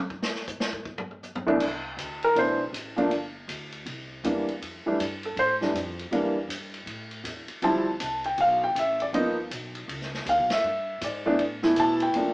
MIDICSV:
0, 0, Header, 1, 5, 480
1, 0, Start_track
1, 0, Key_signature, 0, "major"
1, 0, Tempo, 376176
1, 135, Time_signature, 4, 2, 24, 8
1, 15741, End_track
2, 0, Start_track
2, 0, Title_t, "Grand piano"
2, 0, Program_c, 0, 0
2, 1868, Note_on_c, 0, 52, 64
2, 1872, Note_on_c, 0, 36, 75
2, 1875, Note_on_c, 0, 57, 70
2, 1881, Note_on_c, 0, 59, 66
2, 1891, Note_on_c, 0, 62, 84
2, 2030, Note_off_c, 0, 52, 0
2, 2031, Note_off_c, 0, 36, 0
2, 2033, Note_off_c, 0, 57, 0
2, 2036, Note_off_c, 0, 59, 0
2, 2041, Note_off_c, 0, 62, 0
2, 2864, Note_on_c, 0, 70, 83
2, 3009, Note_on_c, 0, 52, 52
2, 3010, Note_on_c, 0, 57, 48
2, 3015, Note_on_c, 0, 59, 50
2, 3020, Note_off_c, 0, 70, 0
2, 3023, Note_on_c, 0, 62, 61
2, 3045, Note_on_c, 0, 72, 77
2, 3281, Note_off_c, 0, 52, 0
2, 3281, Note_off_c, 0, 57, 0
2, 3284, Note_off_c, 0, 59, 0
2, 3288, Note_off_c, 0, 62, 0
2, 3320, Note_off_c, 0, 72, 0
2, 3782, Note_on_c, 0, 53, 60
2, 3794, Note_on_c, 0, 57, 59
2, 3800, Note_on_c, 0, 58, 59
2, 3807, Note_on_c, 0, 62, 76
2, 3946, Note_off_c, 0, 53, 0
2, 3952, Note_off_c, 0, 57, 0
2, 3954, Note_off_c, 0, 58, 0
2, 3958, Note_off_c, 0, 62, 0
2, 5416, Note_on_c, 0, 52, 53
2, 5425, Note_on_c, 0, 55, 46
2, 5425, Note_on_c, 0, 58, 48
2, 5436, Note_on_c, 0, 62, 59
2, 5684, Note_off_c, 0, 52, 0
2, 5689, Note_off_c, 0, 55, 0
2, 5689, Note_off_c, 0, 58, 0
2, 5694, Note_off_c, 0, 62, 0
2, 6202, Note_on_c, 0, 52, 59
2, 6207, Note_on_c, 0, 55, 61
2, 6211, Note_on_c, 0, 57, 60
2, 6225, Note_on_c, 0, 62, 68
2, 6355, Note_off_c, 0, 52, 0
2, 6358, Note_off_c, 0, 55, 0
2, 6360, Note_off_c, 0, 57, 0
2, 6367, Note_off_c, 0, 62, 0
2, 6704, Note_on_c, 0, 69, 58
2, 6860, Note_off_c, 0, 69, 0
2, 6879, Note_on_c, 0, 72, 90
2, 7051, Note_off_c, 0, 72, 0
2, 7161, Note_on_c, 0, 52, 54
2, 7171, Note_on_c, 0, 55, 50
2, 7178, Note_on_c, 0, 57, 49
2, 7185, Note_on_c, 0, 62, 61
2, 7315, Note_off_c, 0, 52, 0
2, 7320, Note_off_c, 0, 55, 0
2, 7324, Note_off_c, 0, 57, 0
2, 7327, Note_off_c, 0, 62, 0
2, 7809, Note_on_c, 0, 52, 57
2, 7811, Note_on_c, 0, 55, 58
2, 7817, Note_on_c, 0, 58, 60
2, 7823, Note_on_c, 0, 62, 63
2, 8082, Note_off_c, 0, 52, 0
2, 8082, Note_off_c, 0, 55, 0
2, 8086, Note_off_c, 0, 58, 0
2, 8088, Note_off_c, 0, 62, 0
2, 9732, Note_on_c, 0, 53, 65
2, 9743, Note_on_c, 0, 55, 61
2, 9744, Note_on_c, 0, 60, 60
2, 9749, Note_on_c, 0, 64, 69
2, 9751, Note_on_c, 0, 81, 78
2, 10004, Note_off_c, 0, 53, 0
2, 10010, Note_off_c, 0, 55, 0
2, 10010, Note_off_c, 0, 60, 0
2, 10013, Note_off_c, 0, 64, 0
2, 10474, Note_off_c, 0, 81, 0
2, 10534, Note_on_c, 0, 79, 77
2, 10697, Note_off_c, 0, 79, 0
2, 10725, Note_on_c, 0, 77, 80
2, 11003, Note_off_c, 0, 77, 0
2, 11020, Note_on_c, 0, 79, 88
2, 11180, Note_off_c, 0, 79, 0
2, 11216, Note_on_c, 0, 76, 69
2, 11489, Note_off_c, 0, 76, 0
2, 11508, Note_on_c, 0, 74, 74
2, 11652, Note_on_c, 0, 53, 58
2, 11663, Note_on_c, 0, 58, 54
2, 11664, Note_off_c, 0, 74, 0
2, 11667, Note_on_c, 0, 59, 55
2, 11670, Note_on_c, 0, 63, 67
2, 11674, Note_on_c, 0, 75, 72
2, 11850, Note_off_c, 0, 75, 0
2, 11926, Note_off_c, 0, 53, 0
2, 11931, Note_off_c, 0, 58, 0
2, 11933, Note_off_c, 0, 59, 0
2, 11934, Note_off_c, 0, 63, 0
2, 13132, Note_on_c, 0, 77, 78
2, 13408, Note_off_c, 0, 77, 0
2, 13427, Note_on_c, 0, 76, 74
2, 14024, Note_off_c, 0, 76, 0
2, 14090, Note_on_c, 0, 74, 69
2, 14365, Note_on_c, 0, 57, 67
2, 14368, Note_on_c, 0, 52, 70
2, 14375, Note_on_c, 0, 59, 66
2, 14382, Note_on_c, 0, 62, 86
2, 14520, Note_off_c, 0, 74, 0
2, 14521, Note_off_c, 0, 57, 0
2, 14522, Note_off_c, 0, 52, 0
2, 14526, Note_off_c, 0, 59, 0
2, 14529, Note_off_c, 0, 62, 0
2, 14838, Note_on_c, 0, 52, 65
2, 14843, Note_on_c, 0, 57, 55
2, 14848, Note_on_c, 0, 59, 55
2, 14849, Note_on_c, 0, 64, 76
2, 15053, Note_on_c, 0, 81, 92
2, 15328, Note_off_c, 0, 81, 0
2, 15342, Note_on_c, 0, 79, 83
2, 15460, Note_off_c, 0, 52, 0
2, 15462, Note_off_c, 0, 57, 0
2, 15465, Note_off_c, 0, 59, 0
2, 15465, Note_off_c, 0, 64, 0
2, 15509, Note_on_c, 0, 53, 52
2, 15511, Note_on_c, 0, 57, 48
2, 15516, Note_on_c, 0, 58, 46
2, 15528, Note_on_c, 0, 62, 54
2, 15741, Note_off_c, 0, 53, 0
2, 15741, Note_off_c, 0, 57, 0
2, 15741, Note_off_c, 0, 58, 0
2, 15741, Note_off_c, 0, 62, 0
2, 15741, Note_off_c, 0, 79, 0
2, 15741, End_track
3, 0, Start_track
3, 0, Title_t, "Upright bass"
3, 0, Program_c, 1, 32
3, 2040, Note_on_c, 1, 36, 77
3, 2505, Note_off_c, 1, 36, 0
3, 2513, Note_on_c, 1, 38, 76
3, 2985, Note_off_c, 1, 38, 0
3, 3002, Note_on_c, 1, 35, 71
3, 3470, Note_off_c, 1, 35, 0
3, 3478, Note_on_c, 1, 33, 75
3, 3948, Note_off_c, 1, 33, 0
3, 3958, Note_on_c, 1, 31, 80
3, 4428, Note_off_c, 1, 31, 0
3, 4437, Note_on_c, 1, 38, 81
3, 4907, Note_off_c, 1, 38, 0
3, 4922, Note_on_c, 1, 36, 83
3, 5390, Note_off_c, 1, 36, 0
3, 5406, Note_on_c, 1, 40, 91
3, 5872, Note_off_c, 1, 40, 0
3, 5889, Note_on_c, 1, 41, 73
3, 6170, Note_off_c, 1, 41, 0
3, 6373, Note_on_c, 1, 43, 78
3, 6836, Note_off_c, 1, 43, 0
3, 6843, Note_on_c, 1, 45, 82
3, 7308, Note_off_c, 1, 45, 0
3, 7316, Note_on_c, 1, 41, 86
3, 7788, Note_off_c, 1, 41, 0
3, 7798, Note_on_c, 1, 40, 79
3, 8264, Note_off_c, 1, 40, 0
3, 8272, Note_on_c, 1, 43, 79
3, 8746, Note_off_c, 1, 43, 0
3, 8754, Note_on_c, 1, 45, 82
3, 9228, Note_off_c, 1, 45, 0
3, 9235, Note_on_c, 1, 40, 80
3, 9524, Note_off_c, 1, 40, 0
3, 9723, Note_on_c, 1, 38, 75
3, 10193, Note_off_c, 1, 38, 0
3, 10208, Note_on_c, 1, 36, 79
3, 10676, Note_off_c, 1, 36, 0
3, 10691, Note_on_c, 1, 35, 81
3, 11158, Note_off_c, 1, 35, 0
3, 11167, Note_on_c, 1, 33, 83
3, 11636, Note_off_c, 1, 33, 0
3, 11649, Note_on_c, 1, 31, 85
3, 12117, Note_off_c, 1, 31, 0
3, 12133, Note_on_c, 1, 35, 81
3, 12599, Note_off_c, 1, 35, 0
3, 12605, Note_on_c, 1, 37, 78
3, 13076, Note_off_c, 1, 37, 0
3, 13088, Note_on_c, 1, 39, 93
3, 13252, Note_off_c, 1, 39, 0
3, 13252, Note_on_c, 1, 35, 58
3, 13397, Note_off_c, 1, 35, 0
3, 13405, Note_on_c, 1, 31, 59
3, 13558, Note_off_c, 1, 31, 0
3, 13571, Note_on_c, 1, 43, 76
3, 14039, Note_off_c, 1, 43, 0
3, 14052, Note_on_c, 1, 44, 86
3, 14515, Note_off_c, 1, 44, 0
3, 14523, Note_on_c, 1, 45, 75
3, 14994, Note_off_c, 1, 45, 0
3, 15013, Note_on_c, 1, 47, 80
3, 15479, Note_off_c, 1, 47, 0
3, 15496, Note_on_c, 1, 43, 78
3, 15741, Note_off_c, 1, 43, 0
3, 15741, End_track
4, 0, Start_track
4, 0, Title_t, "Muted upright bass strokes"
4, 6199, Note_on_c, 9, 29, 37
4, 6327, Note_off_c, 9, 29, 0
4, 9550, Note_on_c, 9, 29, 36
4, 9677, Note_off_c, 9, 29, 0
4, 15741, End_track
5, 0, Start_track
5, 0, Title_t, "Drums"
5, 130, Note_on_c, 9, 36, 73
5, 258, Note_off_c, 9, 36, 0
5, 287, Note_on_c, 9, 38, 88
5, 414, Note_off_c, 9, 38, 0
5, 446, Note_on_c, 9, 38, 37
5, 573, Note_off_c, 9, 38, 0
5, 608, Note_on_c, 9, 44, 58
5, 610, Note_on_c, 9, 36, 79
5, 736, Note_off_c, 9, 44, 0
5, 738, Note_off_c, 9, 36, 0
5, 768, Note_on_c, 9, 38, 92
5, 896, Note_off_c, 9, 38, 0
5, 931, Note_on_c, 9, 36, 75
5, 1059, Note_off_c, 9, 36, 0
5, 1090, Note_on_c, 9, 36, 77
5, 1218, Note_off_c, 9, 36, 0
5, 1250, Note_on_c, 9, 43, 103
5, 1377, Note_off_c, 9, 43, 0
5, 1415, Note_on_c, 9, 43, 45
5, 1542, Note_off_c, 9, 43, 0
5, 1568, Note_on_c, 9, 43, 36
5, 1570, Note_on_c, 9, 44, 52
5, 1696, Note_off_c, 9, 43, 0
5, 1697, Note_off_c, 9, 44, 0
5, 1729, Note_on_c, 9, 43, 99
5, 1856, Note_off_c, 9, 43, 0
5, 1887, Note_on_c, 9, 43, 89
5, 2015, Note_off_c, 9, 43, 0
5, 2045, Note_on_c, 9, 49, 68
5, 2047, Note_on_c, 9, 36, 67
5, 2173, Note_off_c, 9, 49, 0
5, 2175, Note_off_c, 9, 36, 0
5, 2533, Note_on_c, 9, 44, 56
5, 2533, Note_on_c, 9, 51, 57
5, 2661, Note_off_c, 9, 44, 0
5, 2661, Note_off_c, 9, 51, 0
5, 2840, Note_on_c, 9, 51, 40
5, 2968, Note_off_c, 9, 51, 0
5, 3015, Note_on_c, 9, 51, 53
5, 3143, Note_off_c, 9, 51, 0
5, 3498, Note_on_c, 9, 44, 59
5, 3498, Note_on_c, 9, 51, 61
5, 3626, Note_off_c, 9, 44, 0
5, 3626, Note_off_c, 9, 51, 0
5, 3799, Note_on_c, 9, 51, 37
5, 3927, Note_off_c, 9, 51, 0
5, 3969, Note_on_c, 9, 51, 49
5, 4096, Note_off_c, 9, 51, 0
5, 4451, Note_on_c, 9, 44, 63
5, 4451, Note_on_c, 9, 51, 62
5, 4578, Note_off_c, 9, 44, 0
5, 4578, Note_off_c, 9, 51, 0
5, 4752, Note_on_c, 9, 51, 41
5, 4879, Note_off_c, 9, 51, 0
5, 4929, Note_on_c, 9, 51, 53
5, 5057, Note_off_c, 9, 51, 0
5, 5416, Note_on_c, 9, 44, 49
5, 5416, Note_on_c, 9, 51, 61
5, 5543, Note_off_c, 9, 44, 0
5, 5543, Note_off_c, 9, 51, 0
5, 5723, Note_on_c, 9, 51, 40
5, 5851, Note_off_c, 9, 51, 0
5, 5900, Note_on_c, 9, 51, 58
5, 6028, Note_off_c, 9, 51, 0
5, 6380, Note_on_c, 9, 44, 51
5, 6380, Note_on_c, 9, 51, 66
5, 6508, Note_off_c, 9, 44, 0
5, 6508, Note_off_c, 9, 51, 0
5, 6675, Note_on_c, 9, 51, 41
5, 6802, Note_off_c, 9, 51, 0
5, 6853, Note_on_c, 9, 51, 55
5, 6981, Note_off_c, 9, 51, 0
5, 7161, Note_on_c, 9, 38, 31
5, 7289, Note_off_c, 9, 38, 0
5, 7343, Note_on_c, 9, 44, 58
5, 7343, Note_on_c, 9, 51, 62
5, 7470, Note_off_c, 9, 44, 0
5, 7470, Note_off_c, 9, 51, 0
5, 7647, Note_on_c, 9, 51, 42
5, 7775, Note_off_c, 9, 51, 0
5, 7815, Note_on_c, 9, 51, 55
5, 7943, Note_off_c, 9, 51, 0
5, 8295, Note_on_c, 9, 44, 55
5, 8295, Note_on_c, 9, 51, 68
5, 8423, Note_off_c, 9, 44, 0
5, 8423, Note_off_c, 9, 51, 0
5, 8597, Note_on_c, 9, 51, 42
5, 8725, Note_off_c, 9, 51, 0
5, 8768, Note_on_c, 9, 51, 52
5, 8896, Note_off_c, 9, 51, 0
5, 9072, Note_on_c, 9, 51, 37
5, 9200, Note_off_c, 9, 51, 0
5, 9250, Note_on_c, 9, 44, 56
5, 9250, Note_on_c, 9, 51, 65
5, 9378, Note_off_c, 9, 44, 0
5, 9378, Note_off_c, 9, 51, 0
5, 9546, Note_on_c, 9, 51, 42
5, 9674, Note_off_c, 9, 51, 0
5, 9725, Note_on_c, 9, 51, 51
5, 9853, Note_off_c, 9, 51, 0
5, 10208, Note_on_c, 9, 44, 62
5, 10208, Note_on_c, 9, 51, 66
5, 10336, Note_off_c, 9, 44, 0
5, 10336, Note_off_c, 9, 51, 0
5, 10517, Note_on_c, 9, 51, 39
5, 10645, Note_off_c, 9, 51, 0
5, 10690, Note_on_c, 9, 51, 49
5, 10817, Note_off_c, 9, 51, 0
5, 11179, Note_on_c, 9, 44, 55
5, 11179, Note_on_c, 9, 51, 59
5, 11306, Note_off_c, 9, 44, 0
5, 11306, Note_off_c, 9, 51, 0
5, 11484, Note_on_c, 9, 51, 43
5, 11611, Note_off_c, 9, 51, 0
5, 11663, Note_on_c, 9, 51, 57
5, 11791, Note_off_c, 9, 51, 0
5, 12138, Note_on_c, 9, 44, 51
5, 12138, Note_on_c, 9, 51, 61
5, 12266, Note_off_c, 9, 44, 0
5, 12266, Note_off_c, 9, 51, 0
5, 12440, Note_on_c, 9, 51, 42
5, 12568, Note_off_c, 9, 51, 0
5, 12622, Note_on_c, 9, 51, 57
5, 12750, Note_off_c, 9, 51, 0
5, 12778, Note_on_c, 9, 38, 29
5, 12905, Note_off_c, 9, 38, 0
5, 12937, Note_on_c, 9, 38, 40
5, 13065, Note_off_c, 9, 38, 0
5, 13098, Note_on_c, 9, 44, 54
5, 13098, Note_on_c, 9, 51, 60
5, 13225, Note_off_c, 9, 44, 0
5, 13225, Note_off_c, 9, 51, 0
5, 13398, Note_on_c, 9, 38, 75
5, 13399, Note_on_c, 9, 51, 63
5, 13525, Note_off_c, 9, 38, 0
5, 13527, Note_off_c, 9, 51, 0
5, 14054, Note_on_c, 9, 44, 58
5, 14054, Note_on_c, 9, 51, 63
5, 14181, Note_off_c, 9, 44, 0
5, 14181, Note_off_c, 9, 51, 0
5, 14532, Note_on_c, 9, 51, 51
5, 14660, Note_off_c, 9, 51, 0
5, 14832, Note_on_c, 9, 38, 45
5, 14959, Note_off_c, 9, 38, 0
5, 15008, Note_on_c, 9, 44, 51
5, 15008, Note_on_c, 9, 51, 67
5, 15136, Note_off_c, 9, 44, 0
5, 15136, Note_off_c, 9, 51, 0
5, 15314, Note_on_c, 9, 51, 44
5, 15441, Note_off_c, 9, 51, 0
5, 15487, Note_on_c, 9, 51, 54
5, 15614, Note_off_c, 9, 51, 0
5, 15741, End_track
0, 0, End_of_file